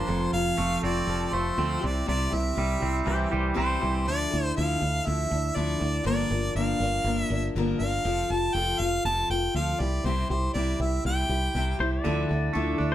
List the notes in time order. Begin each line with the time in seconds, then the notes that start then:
Already playing: C5
0.07 F1 F2 F3 C4 F4 A4
0.33 F1 C4 F4 A4 F5
0.57 F1 F3 A3 C4 F4 A4
0.82 F1 C4 F4 A4 D5
1.06 F1 F3 C4 F4 A4
1.31 F1 A3 C4 F4 A4 C5
1.57 D2 F3 C4 F4 A4
1.81 C2 C3 C4 E4 G4
1.86 D5
2.06 C2 C3 G3 C4 E4 G4 D5
2.30 C2 C4 E4 G4 E5
2.55 C2 C3 G3 C4 E4 G4
2.80 C2 C4 E4 G4
3.04 C2 E3 G3 C4 E4 G4 C5
3.29 C2 G3 C4 E4 G4 C5
3.54 C2 C3 G3 C4 E4 G4 C5
3.79 C2 E3 C4 E4 G4
4.06 D2 D3 F3 D4 E4 A4 D5
4.31 D2 D4 E4 A4
4.56 D2 D3 F3 D4 E4 A4 F5
4.80 D2 D4 E4 A4
5.04 D2 F3 D4 E4 A4 E5
5.30 D2 D4 E4 A4
5.55 D2 D3 F3 D4 E4 A4 D5
5.79 D2 D4 E4 A4
6.04 G1 G2 D3 F3 A#3 D4 A#4 D5
6.30 G1 F3 A#3 D4 A#4
6.55 G1 G2 D3 F3 A#3 D4 A#4 F5
6.80 G1 F3 A#3 D4 A#4
7.04 G1 F3 A#3 D4 A#4
7.20 E5
7.30 G1 F3 A#3 D4 A#4
7.55 G1 G2 D3 F3 A#3 D4 A#4
7.79 G1 A#3 D4 A#4 F5
7.83 F3
8.05 F1 F3 C4 F4 A4
8.30 F1 C4 F4 A4 A5
8.54 F1 F3 C4 F4 A4 G5
8.79 F1 C4 F4 A4 F5
9.05 F1 F3 C4 F4 A4 A5
9.29 F1 C4 F4 A4 G5
9.54 D2 F3 C4 F4 A4 F5
9.80 C2 C4 E4 G4 D5
10.04 C2 C3 G3 C4 E4 G4 C5
10.30 C2 C4 E4 G4 C5
10.54 C2 C3 G3 C4 E4 G4 D5
10.80 C2 C4 E4 G4 E5
11.05 C2 G3 C4 E4 G4 G5
11.29 C2 C4 E4 G4
11.55 C2 C3 G3 C4 E4 G4
11.79 C2 C4 E4 G4 C5
11.93 D5
12.04 D2 D3 F3 D4 E4 A4
12.29 D2 D4 E4 A4
12.53 D2 D3 F3 A3 D4 E4 A4
12.78 D2 D4 E4 A4
12.82 D4
12.92 C5